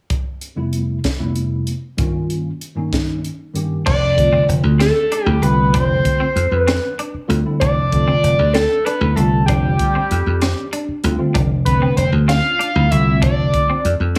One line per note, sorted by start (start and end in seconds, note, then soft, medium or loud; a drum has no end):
0.10 kick medium
0.10 closed hi-hat medium
0.41 closed hi-hat soft
0.55 0.97 F2 medium
0.55 0.97 C3 medium
0.55 0.97 G3 medium
0.55 0.98 A3 medium
0.55 0.98 B3 medium
0.55 0.98 E4 medium
0.73 closed hi-hat soft
1.04 kick medium
1.04 snare medium
1.04 closed hi-hat medium
1.18 1.70 F2 medium
1.18 1.70 C3 medium
1.18 1.70 G3 medium
1.18 1.70 A3 medium
1.18 1.70 B3 medium
1.18 1.71 E4 medium
1.36 closed hi-hat soft
1.67 closed hi-hat medium
1.97 2.49 G2 medium
1.97 2.49 D#3 medium
1.97 2.49 G3 medium
1.97 2.49 A#3 medium
1.97 2.49 C#4 medium
1.97 2.49 F4 medium
1.97 kick medium
1.97 closed hi-hat medium
2.30 closed hi-hat medium
2.61 closed hi-hat medium
2.75 3.27 G2 medium
2.75 3.27 D#3 medium
2.75 3.27 G3 medium
2.75 3.27 A#3 medium
2.75 3.27 C#4 medium
2.75 3.27 D#4 medium
2.93 kick medium
2.93 snare medium
2.93 closed hi-hat medium
3.24 closed hi-hat soft
3.54 3.85 G2 medium
3.54 3.85 D#3 medium
3.54 3.86 G3 medium
3.54 3.86 A#3 medium
3.54 3.86 C#4 medium
3.54 3.86 G4 medium
3.54 closed hi-hat medium
3.86 4.38 F1 loud
3.86 4.07 D4 medium
3.86 4.44 D5 loud
3.86 kick loud
3.86 crash medium
4.16 4.88 D3 medium
4.16 4.88 G3 medium
4.16 4.88 A3 medium
4.16 4.89 C4 medium
4.16 4.89 F4 medium
4.16 kick medium
4.16 closed hi-hat medium
4.33 4.54 C4 medium
4.48 4.61 F1 medium
4.48 closed hi-hat medium
4.63 4.90 D2 medium
4.80 5.00 C4 medium
4.80 5.25 A4 medium
4.80 snare loud
4.80 closed hi-hat medium
5.12 5.32 D4 medium
5.12 closed hi-hat medium
5.25 5.39 D2 medium
5.25 5.37 D3 medium
5.25 5.37 G3 medium
5.25 5.37 A3 medium
5.25 5.37 C4 medium
5.25 5.37 E4 medium
5.25 5.44 G4 medium
5.42 5.75 C2 medium
5.42 6.24 D3 medium
5.42 6.24 G3 medium
5.42 6.24 A3 medium
5.42 6.24 C4 medium
5.42 6.24 F4 medium
5.42 5.73 B4 medium
5.42 closed hi-hat medium
5.74 6.00 F1 medium
5.74 5.95 D4 medium
5.74 6.53 C5 loud
5.74 kick loud
5.74 closed hi-hat medium
6.05 kick medium
6.05 closed hi-hat medium
6.20 6.41 C4 medium
6.20 muted slap bass stroke soft
6.36 6.49 F2 medium
6.36 closed hi-hat medium
6.51 6.77 F2 medium
6.51 6.95 B4 loud
6.67 6.88 C4 medium
6.67 snare loud
6.67 closed hi-hat medium
6.99 7.20 D4 medium
6.99 closed hi-hat medium
7.14 muted slap bass stroke soft
7.28 7.43 D2 medium
7.28 7.39 D3 loud
7.28 7.39 G3 medium
7.28 7.39 A3 medium
7.28 7.39 C4 medium
7.28 7.39 F4 loud
7.28 closed hi-hat medium
7.44 7.75 D3 medium
7.44 7.75 G3 medium
7.44 7.76 A3 medium
7.44 7.76 C4 medium
7.44 7.76 E4 medium
7.60 8.13 F1 loud
7.60 7.82 D4 medium
7.60 8.55 D5 loud
7.60 kick loud
7.60 closed hi-hat medium
7.91 8.63 D3 medium
7.91 8.63 G3 medium
7.91 8.63 A3 medium
7.91 8.64 C4 medium
7.91 8.64 F4 medium
7.91 kick medium
7.91 closed hi-hat medium
8.08 8.28 C4 medium
8.23 8.36 F1 medium
8.23 closed hi-hat medium
8.39 8.65 D2 medium
8.53 8.75 C4 medium
8.53 8.86 A4 loud
8.53 snare loud
8.53 closed hi-hat medium
8.85 9.07 D4 medium
8.85 9.17 B4 medium
8.85 closed hi-hat medium
9.01 9.14 D2 medium
9.01 9.12 D3 medium
9.01 9.12 G3 medium
9.01 9.12 A3 medium
9.01 9.12 C4 medium
9.01 9.12 E4 medium
9.15 9.50 C2 medium
9.15 9.98 D3 medium
9.15 9.98 G3 medium
9.15 9.98 A3 medium
9.15 9.99 C4 medium
9.15 9.99 F4 medium
9.15 9.45 A4 medium
9.15 closed hi-hat medium
9.46 9.74 F1 medium
9.46 9.69 D4 medium
9.46 10.68 G4 loud
9.46 kick loud
9.46 closed hi-hat medium
9.79 kick medium
9.79 closed hi-hat medium
9.95 10.16 C4 medium
9.95 muted slap bass stroke soft
10.11 10.24 F2 medium
10.11 closed hi-hat medium
10.26 10.52 F2 medium
10.42 10.63 C4 medium
10.42 snare loud
10.42 closed hi-hat medium
10.73 10.94 D4 medium
10.73 closed hi-hat medium
10.88 muted slap bass stroke soft
11.03 11.17 D2 medium
11.03 11.14 D3 medium
11.03 11.14 G3 medium
11.03 11.14 A3 medium
11.03 11.14 C4 medium
11.03 11.15 F4 loud
11.03 closed hi-hat medium
11.18 11.49 D3 medium
11.18 11.49 G3 medium
11.18 11.49 A3 medium
11.18 11.49 C4 medium
11.18 11.50 F4 medium
11.34 11.87 F1 loud
11.34 11.55 D4 medium
11.34 kick loud
11.34 closed hi-hat medium
11.65 12.37 D3 medium
11.65 12.37 G3 medium
11.65 12.37 A3 medium
11.65 12.37 C4 medium
11.65 12.37 D4 medium
11.65 11.95 B4 medium
11.65 kick medium
11.65 closed hi-hat medium
11.82 12.03 C4 medium
11.97 12.10 F1 medium
11.97 12.11 C5 medium
11.97 closed hi-hat medium
12.12 12.39 D2 medium
12.28 12.49 C4 medium
12.28 12.92 F5 loud
12.28 snare loud
12.28 closed hi-hat medium
12.59 12.80 D4 medium
12.59 closed hi-hat medium
12.75 12.88 D2 medium
12.75 12.85 D3 medium
12.75 12.85 G3 medium
12.75 12.86 A3 medium
12.75 12.86 C4 medium
12.75 12.86 E4 medium
12.91 13.24 C2 medium
12.91 13.72 D3 medium
12.91 13.72 G3 medium
12.91 13.73 A3 medium
12.91 13.73 C4 medium
12.91 13.73 F4 medium
12.91 13.22 E5 medium
12.91 closed hi-hat medium
13.22 13.48 F1 medium
13.22 13.43 D4 medium
13.22 13.89 D5 loud
13.22 kick loud
13.22 closed hi-hat medium
13.54 kick medium
13.54 closed hi-hat medium
13.69 13.90 C4 medium
13.69 muted slap bass stroke soft
13.85 13.98 F2 medium
13.85 closed hi-hat medium
14.00 14.18 F2 medium